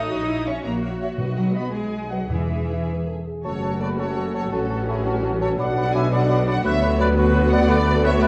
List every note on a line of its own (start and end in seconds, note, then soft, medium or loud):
0.00 0.46 D#4 medium
0.00 0.11 A4 medium
0.00 0.46 D#6 medium
0.10 0.58 A#1 medium
0.10 0.29 F#4 medium
0.10 0.27 C#5 medium
0.10 0.27 E5 medium
0.28 0.47 E4 medium
0.28 0.45 C#5 soft
0.28 0.44 E5 soft
0.45 0.65 C#4 medium
0.45 1.73 F#4 medium
0.45 0.62 C#5 soft
0.45 0.53 C#5 medium
0.45 0.62 E5 soft
0.45 0.53 E5 medium
0.45 0.65 C#6 medium
0.63 1.12 A#1 medium
0.63 0.83 A#3 medium
0.63 0.81 C#5 soft
0.63 0.82 E5 soft
0.63 0.71 A#5 medium
0.82 0.99 C#5 soft
0.82 0.99 E5 soft
1.00 1.18 C#5 soft
1.00 1.07 C#5 medium
1.00 1.18 E5 soft
1.00 1.07 E5 medium
1.18 1.69 B1 medium
1.18 1.69 B2 medium
1.18 1.69 B4 medium
1.18 1.69 D#5 medium
1.36 1.53 F#3 medium
1.36 1.44 F#5 medium
1.54 1.73 B3 medium
1.54 1.61 B4 soft
1.54 1.61 D#5 medium
1.54 1.73 B5 medium
1.73 2.29 B1 soft
1.73 2.10 G#3 medium
1.73 2.29 G#4 soft
1.73 2.29 G#4 medium
1.73 2.29 D#5 soft
1.73 2.10 G#5 medium
2.11 2.30 F#3 medium
2.11 2.18 B4 soft
2.11 2.18 D#5 soft
2.11 2.30 F#5 soft
2.30 2.84 E2 medium
2.30 3.26 E2 soft
2.30 2.87 E3 soft
2.30 3.24 G#4 soft
2.30 3.15 G#4 soft
2.30 3.26 E5 soft
2.30 2.88 E5 soft
2.70 2.76 G#4 soft
2.70 2.76 E5 soft
2.89 3.06 B4 soft
3.07 3.26 A4 soft
3.26 3.45 G#4 soft
3.44 4.54 F#1 medium
3.44 4.48 F#1 medium
3.44 4.49 F#2 medium
3.44 3.53 F#3 soft
3.44 4.49 A3 medium
3.44 5.55 C#4 medium
3.44 5.55 F#4 medium
3.44 4.49 F#4 medium
3.44 4.48 A4 medium
3.44 3.79 A4 medium
3.44 3.78 C#5 medium
3.44 3.53 A5 soft
3.44 3.51 C#6 soft
3.62 3.71 F#3 soft
3.62 3.70 A5 soft
3.62 3.69 C#6 soft
3.81 3.89 F#3 soft
3.81 3.99 B4 medium
3.81 3.88 D5 medium
3.81 3.89 A5 soft
3.81 3.88 C#6 soft
3.98 4.07 F#3 soft
3.98 4.33 A4 medium
3.98 4.34 C#5 medium
3.98 4.07 A5 soft
3.98 4.06 C#6 soft
4.16 4.25 F#3 medium
4.16 4.25 A5 soft
4.16 4.24 C#6 soft
4.34 4.43 F#3 soft
4.34 4.52 A4 medium
4.34 4.53 C#5 medium
4.34 4.42 A5 soft
4.34 4.41 C#6 soft
4.52 5.58 A1 medium
4.52 5.59 A1 medium
4.52 5.59 A2 medium
4.52 4.60 F#3 medium
4.52 6.61 F#3 medium
4.52 5.56 C#4 medium
4.52 6.63 F#4 medium
4.52 4.87 F#4 medium
4.52 4.88 A4 medium
4.52 4.60 A5 medium
4.52 4.58 C#6 medium
4.69 4.78 F#3 soft
4.69 4.78 A5 soft
4.69 4.76 C#6 soft
4.88 4.96 F#3 soft
4.88 5.06 E4 medium
4.88 5.06 G#4 medium
4.88 4.96 A5 soft
4.88 4.94 C#6 medium
5.05 5.14 F#3 medium
5.05 5.41 C#4 medium
5.05 5.41 F#4 medium
5.05 5.14 A5 medium
5.05 5.12 C#6 medium
5.23 5.31 F#3 medium
5.23 5.32 A5 soft
5.23 5.31 C#6 medium
5.41 5.49 F#3 soft
5.41 5.59 A4 medium
5.41 5.49 C#5 medium
5.41 5.49 A5 medium
5.41 5.49 C#6 medium
5.59 6.62 B1 medium
5.59 6.63 B2 medium
5.59 5.67 F#3 medium
5.59 6.65 D4 medium
5.59 6.61 D4 medium
5.59 7.65 F#4 medium
5.59 5.67 B4 medium
5.59 5.94 D5 medium
5.59 5.94 F#5 loud
5.59 5.66 D6 medium
5.77 5.85 F#3 medium
5.77 5.85 B4 medium
5.77 5.83 D6 medium
5.94 6.03 F#3 medium
5.94 6.03 B4 medium
5.94 6.12 E5 medium
5.94 6.12 G#5 loud
5.94 6.01 D6 medium
6.12 6.20 F#3 medium
6.12 6.20 B4 medium
6.12 6.46 D5 medium
6.12 6.47 F#5 medium
6.12 6.19 D6 medium
6.29 6.37 F#3 medium
6.29 6.37 B4 medium
6.29 6.37 D6 medium
6.47 6.55 F#3 medium
6.47 6.55 B4 medium
6.47 6.55 D5 medium
6.47 6.65 F#5 loud
6.47 6.54 D6 medium
6.64 8.28 D2 medium
6.64 7.65 F#3 medium
6.64 6.72 F#3 medium
6.64 8.28 B3 medium
6.64 7.67 F#4 medium
6.64 6.73 B4 medium
6.64 6.99 C#5 medium
6.64 6.99 E5 loud
6.64 6.72 F#6 medium
6.82 6.90 F#3 medium
6.82 6.90 B4 medium
6.82 6.90 F#6 medium
7.00 7.08 F#3 medium
7.00 7.17 B4 medium
7.00 7.08 B4 medium
7.00 7.07 D5 loud
7.00 7.07 F#6 medium
7.17 7.25 F#3 medium
7.17 7.51 F#4 medium
7.17 7.51 B4 loud
7.17 7.25 B4 medium
7.17 7.24 F#6 medium
7.34 7.42 F#3 medium
7.34 7.43 B4 medium
7.34 7.43 F#6 medium
7.51 7.59 F#3 medium
7.51 7.60 B4 medium
7.51 7.69 D5 loud
7.51 7.69 F#5 loud
7.51 7.59 F#6 medium
7.68 8.28 A3 medium
7.68 7.77 A3 medium
7.68 8.28 F#4 medium
7.68 8.28 A4 medium
7.68 8.04 B4 medium
7.68 7.77 B4 medium
7.68 8.04 D5 loud
7.68 7.76 F#6 medium
7.86 7.94 A3 medium
7.86 7.94 B4 medium
7.86 7.93 F#6 medium
8.04 8.12 A3 medium
8.04 8.12 B4 medium
8.04 8.22 C#5 loud
8.04 8.22 E5 loud
8.04 8.10 F#6 medium
8.21 8.28 A3 medium
8.21 8.28 B4 loud
8.21 8.28 B4 medium
8.21 8.28 D5 loud
8.21 8.28 F#6 medium